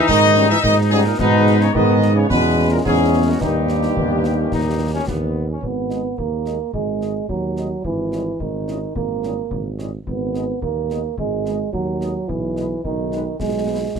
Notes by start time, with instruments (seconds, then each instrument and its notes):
Already playing: trombone section D#4
0.08 tuba G#2, euphonium D#3, trumpet section D#5, concert bass drum, snare
0.36 french horn section G3 C#4 D#4
0.50 euphonium E3, trumpet section E5
0.63 tuba G#2, euphonium D#3, trumpet section D#5, concert bass drum, snare
0.91 euphonium G#2, french horn section G3 C#4 D#4, trumpet section G#4
1.05 euphonium A#2, trumpet section A#4
1.19 tuba G#2, euphonium B2, french horn section G#3 B3 D#4, trombone section D#4, trumpet section B4, concert bass drum, snare, crash
1.47 snare
1.61 euphonium C#3, trumpet section C#5, snare
1.74 tuba G#2, euphonium D#3, french horn section G#3 B3 D#4, trombone section B3, trumpet section D#5, concert bass drum
2.02 snare
2.15 euphonium C#3, trumpet section C#5
2.29 tuba E2, euphonium B2, trombone section G#3, french horn section G#3 C#4, trumpet section B4, concert bass drum, snare
2.70 euphonium A#2, trumpet section A#4
2.84 tuba E2, euphonium G#2, french horn section G#3 C#4, trombone section C#4, trumpet section G#4, concert bass drum, snare
3.13 french horn section B3
3.25 euphonium F#2, trumpet section F#4
3.39 tuba D#2, euphonium G2, french horn section A#3 D#4, trombone section D#4, trumpet section G4, concert bass drum, snare
3.69 snare
3.83 snare
3.97 tuba D#2, trombone section B3, concert bass drum
4.24 snare
4.39 trombone section C#4
4.52 tuba D#2, trombone section D#4, concert bass drum, snare
4.94 trombone section C#4
5.07 tuba D#2, trombone section B3, concert bass drum, snare
5.51 trombone section C#4
5.62 tuba G#1, euphonium B3, concert bass drum
5.90 french horn section G#3 D#4, trumpet section D#5, snare
6.17 tuba D#2, euphonium A#3, concert bass drum
6.46 french horn section G#3 D#4, trumpet section D#5, snare
6.73 tuba G#1, euphonium G#3, concert bass drum
7.01 french horn section G#3 D#4, trumpet section D#5, snare
7.29 tuba D#2, euphonium F#3, concert bass drum
7.57 french horn section G#3 D#4, trumpet section D#5, snare
7.84 tuba G#1, euphonium E3, concert bass drum
8.12 french horn section G3 C#4 E4, trumpet section D#5, snare
8.40 tuba G#1, euphonium D#3, concert bass drum
8.67 french horn section G3 C#4 E4, trumpet section D#5, snare
8.95 tuba G#1, euphonium A#3, concert bass drum
9.23 french horn section G3 C#4 E4, trumpet section D#5, snare
9.50 tuba G#1, concert bass drum
9.79 french horn section G3 C#4 E4, trumpet section D#5, snare
10.06 tuba G#1, euphonium B3, concert bass drum
10.34 french horn section G#3 B3 D#4, trumpet section D#5, snare
10.62 tuba D#2, euphonium A#3, concert bass drum
10.90 french horn section G#3 B3 D#4, trumpet section D#5, snare
11.18 tuba G#1, euphonium G#3, concert bass drum
11.45 french horn section G#3 B3 D#4, trumpet section D#5, snare
11.72 tuba D#2, euphonium F#3, concert bass drum
12.01 french horn section G#3 B3 D#4, trumpet section D#5, snare
12.28 tuba B1, euphonium E3, concert bass drum
12.56 french horn section G#3 B3 D#4, trumpet section B4, snare
12.84 tuba B1, euphonium D#3, concert bass drum
13.11 french horn section G#3 B3 D#4, trumpet section B4, snare
13.39 tuba B1, euphonium G#3, concert bass drum, snare
13.67 french horn section G#3 B3 D#4, trumpet section B4
13.95 tuba B1, concert bass drum, snare